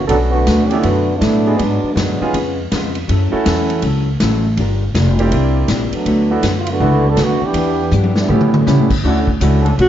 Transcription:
0.06 upright bass B1, hollow-body jazz guitar B2, trombone section F#3 B3 D4 A4, ride
0.10 hollow-body jazz guitar F#3 A3 D4, grand piano A3 B3 C#4 D4 F#4
0.30 trombone section D3 A3 B3 F#4
0.46 upright bass D2, hollow-body jazz guitar B2 F#3 A3 D4, snare, hi-hat pedal, ride
0.66 trombone section E3 A3 C#4 G4
0.71 grand piano A3 B3 C#4 D4 E4, ride
0.80 trombone section D3 A3 B3 F#4, ride
0.84 upright bass F#2, hollow-body jazz guitar B2 F#3 A3 D4
1.16 trombone section A3 B3 D4 E4
1.21 upright bass A2, hollow-body jazz guitar B2 F#3 A3 D4, snare, hi-hat pedal, ride
1.47 grand piano G#3 B3 D4 F#4 G#4
1.56 upright bass G#2, hollow-body jazz guitar G#2, trombone section F#3 G#3 B3 D4, ride
1.60 hollow-body jazz guitar F#3 B3 D4
1.83 muted upright bass stroke
1.93 upright bass F#2, trombone section D3 F#3 G#3 A#3 B3
1.97 hollow-body jazz guitar G#2 F#3 B3 D4, snare, hi-hat pedal, ride
2.21 grand piano B3 C#4 D#4 F4 G#4, muted upright bass stroke
2.33 upright bass F2, hollow-body jazz guitar C#3 G#3 B3 F4, ride
2.72 upright bass F2, hollow-body jazz guitar C#3 G#3 B3 F4, snare, hi-hat pedal, ride
2.95 ride
3.08 upright bass F#2, hollow-body jazz guitar F#3 C#4 E4 A4, ride
3.32 grand piano A3 C#4 E4 F#4 A4, muted upright bass stroke
3.45 upright bass E2, hollow-body jazz guitar F#3 C#4 E4 A4, snare, hi-hat pedal, ride
3.70 ride
3.82 upright bass C#2, hollow-body jazz guitar F#3 C#4 E4 A4, ride
4.20 upright bass A1, hollow-body jazz guitar F#3 C#4 E4 A4, snare, hi-hat pedal, ride
4.57 upright bass G1, hollow-body jazz guitar G3 D4 F4 A#4, ride
4.94 upright bass F1, hollow-body jazz guitar G3 D4 F4 A#4, snare, hi-hat pedal, ride
5.19 grand piano A#3 C4 D4 E4 G4, ride
5.31 upright bass C2, hollow-body jazz guitar C3 A#3 D4 E4, ride
5.68 upright bass A#1, hollow-body jazz guitar C3 A#3 D4 E4, snare, hi-hat pedal, ride
5.92 trombone section F#3 A3 B3 D4, muted upright bass stroke, ride
6.05 upright bass D2, hollow-body jazz guitar D3 A3 B3 F#4, ride
6.31 grand piano A3 B3 D4 E4 F#4
6.43 upright bass F#2, hollow-body jazz guitar D3 A3 B3 F#4, snare, hi-hat pedal, ride
6.60 trombone section F4
6.67 trombone section D3 B3 F#4, ride
6.71 trombone section A3
6.80 upright bass C#2, hollow-body jazz guitar D3 A3 B3 F#4, grand piano A3 B3 D4 E4 F#4
7.08 trombone section F#3 B3 D4 A4
7.16 upright bass D2, hollow-body jazz guitar D3 A3 B3 F#4, snare, hi-hat pedal, ride
7.22 trombone section D3 A3 B3 F#4
7.41 trombone section E3, muted upright bass stroke
7.45 trombone section B3 D4 G4
7.53 upright bass E2, hollow-body jazz guitar E3 B3, ride
7.57 hollow-body jazz guitar D4 G4
7.91 upright bass G2, hollow-body jazz guitar E3 B3 D4 G4, hi-hat pedal, high tom
8.04 high tom
8.16 trombone section G3 B3 D4 E4, snare
8.29 upright bass A2, hollow-body jazz guitar A2 G3 C#4 E4, trombone section E3 G3 A3 C#4, grand piano A3 B3 C#4 E4 G4, mid tom
8.41 mid tom
8.54 mid tom
8.66 hollow-body jazz guitar A2 G3 C#4 E4, upright bass C#3, grand piano A3 B3 C#4 E4 G4, snare, hi-hat pedal
8.79 upright bass A2
8.90 upright bass G2, kick, crash
9.03 upright bass D2, trombone section D3 A3 C#4 F#4, hollow-body jazz guitar D3 A3 C#4 F#4, grand piano A3 C#4 D4 E4 F#4
9.28 kick
9.40 upright bass C#2, hollow-body jazz guitar D3 A3 C#4 F#4, grand piano A3 C#4 D4 E4 F#4, hi-hat pedal, ride
9.62 trombone section D3 A3 C#4 A4, ride
9.78 upright bass B1, hollow-body jazz guitar D3 A3 C#4 F#4, alto saxophone F#4, ride

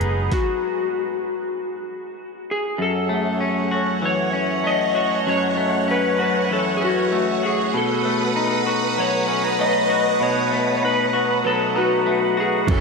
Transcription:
Already playing: clean electric guitar G#2 F#3 B3, electric slide guitar G#4, string machine B4 F#5 G#5 D#6
0.00 fingered electric bass F#1, clean electric guitar D#4, closed hi-hat
0.31 electric slide guitar F#4, kick, snare
2.51 electric slide guitar G#4
2.78 clean electric guitar F#2, electric slide guitar A4, string machine C#5 F#5
3.09 clean electric guitar A3
3.40 clean electric guitar C#4
3.71 clean electric guitar F#4
4.02 clean electric guitar E3, electric slide guitar C#5
4.33 clean electric guitar C#4
4.64 clean electric guitar A3, electric slide guitar D#5
4.95 clean electric guitar F#4
5.27 clean electric guitar F#2, electric slide guitar C#5
5.57 clean electric guitar A3
5.88 clean electric guitar C#4, electric slide guitar B4
6.19 clean electric guitar F#4, electric slide guitar B4
6.46 electric slide guitar B4
6.50 clean electric guitar E3, electric slide guitar A4
6.77 electric slide guitar G#4
6.81 clean electric guitar C#4, electric slide guitar F#4
7.12 clean electric guitar A3
7.43 clean electric guitar F#4, electric slide guitar G#4
7.74 clean electric guitar B2, electric slide guitar A4, string machine B4 F#5 D#6
8.05 clean electric guitar A3
8.36 clean electric guitar D#4
8.66 clean electric guitar F#4
8.98 clean electric guitar F#3, electric slide guitar C#5
9.28 clean electric guitar C#4
9.44 clean electric guitar D#4
9.59 clean electric guitar A3, electric slide guitar D#5
9.90 clean electric guitar F#4
10.20 clean electric guitar B2, electric slide guitar C#5
10.52 clean electric guitar A3
10.77 electric slide guitar C#5
10.83 clean electric guitar D#4, electric slide guitar B4
11.13 clean electric guitar F#4
11.44 clean electric guitar F#3, electric slide guitar A4
11.76 clean electric guitar D#4, electric slide guitar F#4
12.06 clean electric guitar A3
12.37 clean electric guitar F#4, electric slide guitar G#4
12.67 fingered electric bass F#1, overdriven electric guitar F#2 C#3 E3 A3 C#4 F#4, clean electric guitar F#2, string machine C#5, kick, ride
12.71 electric slide guitar A4

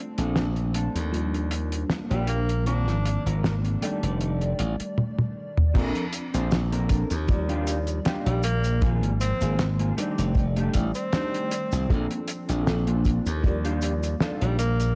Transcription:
Already playing: fm electric piano F3 A3 C4 D4
0.18 slap bass A#1, clean electric guitar C4 D4 A4, closed hi-hat
0.36 snare, closed hi-hat
0.56 closed hi-hat
0.74 clean electric guitar C4 D4 A4, closed hi-hat
0.95 slap bass D#2, closed hi-hat
1.12 fm electric piano F3 G3 A#3 D4, closed hi-hat
1.34 closed hi-hat
1.51 closed hi-hat
1.72 muted clean electric guitar stroke, closed hi-hat
1.90 muted clean electric guitar stroke, snare, closed hi-hat
2.10 slap bass A#1, tenor saxophone G3, clean electric guitar D4 F4 G4, closed hi-hat
2.27 tenor saxophone A#3, closed hi-hat
2.49 closed hi-hat
2.65 fm electric piano D#3 F3 A#3 C4, clean electric guitar C4 F4 A#4, tenor saxophone D4, closed hi-hat
2.88 slap bass G#1, snare, closed hi-hat
3.06 closed hi-hat
3.25 slap bass G#1, clean electric guitar C4 F4 A#4, closed hi-hat
3.44 snare, closed hi-hat
3.65 closed hi-hat
3.81 fm electric piano D#3 G3 A3 D5, clean electric guitar D4 D#4 G4 A4, closed hi-hat
4.03 slap bass F1, closed hi-hat
4.21 closed hi-hat
4.41 closed hi-hat
4.59 slap bass A1, closed hi-hat
4.80 muted clean electric guitar stroke, closed hi-hat
4.98 high tom
5.18 high tom
5.57 mid tom
5.73 slap bass A#1, fm electric piano F3 C4 D4, clean electric guitar C4 D4 A4 A#4, kick, closed hi-hat, crash, cabasa
5.95 closed hi-hat
6.12 closed hi-hat, cabasa
6.34 slap bass A#1, clean electric guitar C4 D4 A4 C5, closed hi-hat, cabasa
6.51 snare, closed hi-hat, cabasa
6.72 clean electric guitar C4 D4 A4 A#4, closed hi-hat
6.89 kick, closed hi-hat, cabasa
7.10 slap bass D#2, closed hi-hat, cabasa
7.27 fm electric piano F3 G3 A#3 D5, kick, closed hi-hat, cabasa
7.49 clean electric guitar D4 D#4 F4 G4, closed hi-hat
7.67 closed hi-hat, cabasa
7.87 closed hi-hat, cabasa
8.05 clean electric guitar D4 D#4 F4 G4, snare, closed hi-hat, cabasa
8.26 slap bass A#1, tenor saxophone G3, closed hi-hat
8.43 tenor saxophone A#3, closed hi-hat, cabasa
8.64 closed hi-hat, cabasa
8.81 fm electric piano D#3 F3 A#3 C4, clean electric guitar A#3 C4 F4 G#4, kick, closed hi-hat, cabasa
9.03 slap bass G#1, closed hi-hat
9.21 tenor saxophone C4, closed hi-hat, cabasa
9.41 slap bass G#1, clean electric guitar A#3 C4 F4 G#4, closed hi-hat, cabasa
9.59 snare, closed hi-hat, cabasa
9.79 clean electric guitar A#3 C4 F4 G#4, closed hi-hat
9.96 fm electric piano D#3 G3 A3 D5, clean electric guitar A3 D4 D#4 G4, closed hi-hat, cabasa
10.18 slap bass F1, closed hi-hat, cabasa
10.35 kick, closed hi-hat, cabasa
10.56 clean electric guitar A3 D4 D#4 G4, closed hi-hat
10.74 slap bass A1, kick, closed hi-hat, cabasa
10.95 tenor saxophone C4, closed hi-hat, cabasa
11.13 clean electric guitar A3 D4 D#4 G4, snare, closed hi-hat, cabasa
11.34 closed hi-hat
11.51 closed hi-hat, cabasa
11.72 slap bass C2, closed hi-hat, cabasa
11.89 slap bass A#1, fm electric piano F3 C4 D4 A4, clean electric guitar A#3 C4 D4 A4, kick, closed hi-hat, cabasa
12.11 closed hi-hat
12.28 closed hi-hat, cabasa
12.49 slap bass A#1, clean electric guitar A#3 C4 D4 A4, closed hi-hat, cabasa
12.67 snare, closed hi-hat, cabasa
12.87 clean electric guitar A#3 C4 D4 F4, closed hi-hat
13.05 kick, closed hi-hat, cabasa
13.26 slap bass D#2, closed hi-hat, cabasa
13.42 fm electric piano F3 G3 A#3 D5, kick, closed hi-hat, cabasa
13.64 clean electric guitar D4 D#4 F4 G4, closed hi-hat
13.82 closed hi-hat, cabasa
14.03 closed hi-hat, cabasa
14.20 clean electric guitar D4 D#4 F4 A4, snare, closed hi-hat, cabasa
14.41 slap bass A#1, tenor saxophone G3, closed hi-hat
14.59 tenor saxophone A#3, closed hi-hat, cabasa
14.80 closed hi-hat, cabasa

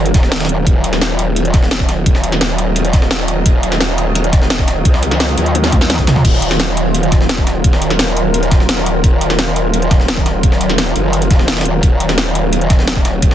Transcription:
Already playing: wobble bass F#1, synth drone D#3 F#3 F4 A#4
0.06 closed hi-hat
0.14 wobble bass D#1, kick, snare, closed hi-hat
0.23 snare
0.32 snare, closed hi-hat
0.36 snare, closed hi-hat
0.40 snare, closed hi-hat
0.45 snare, closed hi-hat
0.49 closed hi-hat
0.67 wobble bass D#1, synth drone D#5, kick, closed hi-hat
0.84 closed hi-hat
0.93 snare, closed hi-hat
1.01 snare, closed hi-hat
1.19 closed hi-hat
1.36 closed hi-hat
1.45 closed hi-hat
1.54 kick, snare, closed hi-hat
1.63 snare
1.71 snare, closed hi-hat
1.80 kick, snare
1.89 snare, closed hi-hat
2.06 wobble bass D#1, kick, closed hi-hat
2.15 snare
2.24 closed hi-hat
2.32 snare, closed hi-hat
2.41 snare, closed hi-hat
2.50 closed hi-hat
2.58 closed hi-hat
2.76 closed hi-hat
2.85 closed hi-hat
2.93 kick, snare, closed hi-hat
3.02 snare
3.11 snare, closed hi-hat
3.19 snare
3.28 closed hi-hat
3.46 wobble bass D#1, kick, closed hi-hat
3.63 closed hi-hat
3.72 snare, closed hi-hat
3.81 snare, closed hi-hat
3.98 closed hi-hat
4.15 closed hi-hat
4.24 closed hi-hat
4.33 kick, snare, closed hi-hat
4.42 snare
4.50 snare, closed hi-hat
4.59 kick, snare
4.68 snare, closed hi-hat
4.85 wobble bass C#2, kick, closed hi-hat
4.94 snare
5.03 closed hi-hat
5.11 snare, closed hi-hat
5.20 snare, closed hi-hat
5.29 closed hi-hat
5.38 wobble bass D#2, closed hi-hat
5.46 closed hi-hat
5.55 closed hi-hat, high tom
5.64 snare, closed hi-hat
5.72 kick, closed hi-hat, high tom
5.81 snare
5.90 snare, closed hi-hat, mid tom
5.99 kick, snare, closed hi-hat
6.07 snare, closed hi-hat, mid tom
6.16 snare, mid tom
6.25 wobble bass D#1, synth drone A#4, kick, closed hi-hat, crash
6.42 closed hi-hat
6.51 snare, closed hi-hat
6.60 snare, closed hi-hat
6.77 closed hi-hat
6.95 closed hi-hat
7.03 closed hi-hat
7.12 kick, snare, closed hi-hat
7.21 snare
7.29 snare, closed hi-hat
7.38 kick, snare
7.47 snare, closed hi-hat
7.64 wobble bass D#1, kick, closed hi-hat
7.73 snare
7.82 closed hi-hat
7.90 snare, closed hi-hat
7.99 snare, closed hi-hat
8.08 closed hi-hat
8.17 closed hi-hat
8.34 closed hi-hat
8.43 closed hi-hat
8.51 kick, snare, closed hi-hat
8.60 snare
8.69 snare, closed hi-hat
8.78 snare
8.86 closed hi-hat
9.04 wobble bass D#1, kick, closed hi-hat
9.21 closed hi-hat
9.30 snare, closed hi-hat
9.39 snare, closed hi-hat
9.56 closed hi-hat
9.74 closed hi-hat
9.82 closed hi-hat
9.91 kick, snare, closed hi-hat
10.00 snare
10.08 snare, closed hi-hat
10.17 kick, snare
10.26 snare, closed hi-hat
10.43 wobble bass D#1, kick, closed hi-hat
10.52 snare
10.61 closed hi-hat
10.69 snare, closed hi-hat
10.78 snare, closed hi-hat
10.87 closed hi-hat
10.96 wobble bass F#1, closed hi-hat
11.13 closed hi-hat
11.22 closed hi-hat
11.31 wobble bass D#1, kick, snare, closed hi-hat
11.39 snare
11.48 snare, closed hi-hat
11.52 snare, closed hi-hat
11.57 snare, closed hi-hat
11.61 snare, closed hi-hat
11.65 closed hi-hat
11.83 wobble bass D#1, synth drone C#5, kick, closed hi-hat
12.00 closed hi-hat
12.09 snare, closed hi-hat
12.18 snare, closed hi-hat
12.35 closed hi-hat
12.53 closed hi-hat
12.61 closed hi-hat
12.70 kick, snare, closed hi-hat
12.79 snare
12.88 snare, closed hi-hat
12.96 kick, snare
13.05 snare, closed hi-hat
13.22 wobble bass D#1, kick, closed hi-hat
13.31 snare

